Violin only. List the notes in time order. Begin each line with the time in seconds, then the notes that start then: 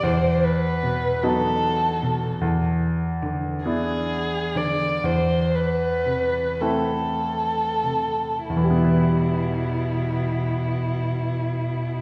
0.03 C5
0.44 B4
1.23 A4
3.65 G#4
4.56 D5
5.05 C5
5.55 B4
6.61 A4
8.49 E4